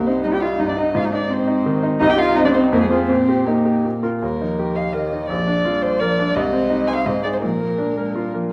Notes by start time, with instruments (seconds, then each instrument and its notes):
Already playing: grand piano C2
0.06 cello C4, grand piano D#4, violin C5
0.24 grand piano G3, cello D#4, violin D#5
0.34 cello G4, violin G5
0.41 grand piano D#4, cello F4, violin F5
0.58 grand piano G2, cello D#4, violin D#5
0.68 cello D4, violin D5
0.76 cello D#4, grand piano D#4, violin D#5
0.95 grand piano G#2, cello F4, violin F5
1.04 cello D#4, violin D#5
1.11 cello D4, grand piano D#4, violin D5
1.29 cello C4, grand piano C4
1.33 violin C5
1.48 grand piano D#4
1.66 grand piano D#3
1.83 grand piano D#4
1.99 grand piano C2, cello D#4, violin D#5
2.09 cello G4, violin G5
2.18 grand piano D#4, cello F4, violin F5
2.35 grand piano C4, cello D#4, violin D#5
2.45 cello D4, violin D5
2.53 cello C4, grand piano D#4, violin C5
2.72 grand piano F2, cello A#3, violin A#4
2.81 cello G#3, violin G#4
2.89 cello C4, grand piano F4 G#4, violin C5
3.09 grand piano A#2, cello C4, violin C5
3.29 grand piano G4
3.45 cello A#3, grand piano D#4, violin A#4
3.66 grand piano G4
3.85 grand piano A#2
4.03 grand piano F4 A#4
4.22 grand piano D#2, cello G3, violin A#4
4.41 cello F3, grand piano D#4
4.59 grand piano G4
4.76 grand piano D#5, violin F5
4.93 cello D#3, grand piano A#4, violin D#5
5.13 grand piano D#4
5.28 grand piano A#1, cello F3, violin D5
5.48 grand piano D4
5.65 cello G3, grand piano F4
5.82 violin C5, grand piano D5
5.99 cello F3, grand piano A#4, violin D5
6.19 grand piano D4
6.35 grand piano C2, cello G#3, violin D#5
6.53 grand piano C4
6.70 grand piano D#4
6.87 grand piano C5, violin G#5
6.95 violin F5
7.06 grand piano G#2, cello G#3, violin D#5
7.23 grand piano D#4 G#4, violin D5
7.33 violin C5
7.41 grand piano A#2, cello F3, violin A#4
7.60 grand piano A#3
7.78 cello A#3, grand piano D4
7.97 cello G#3, grand piano A#4
8.15 cello G3, grand piano F4
8.34 cello F3, grand piano A#3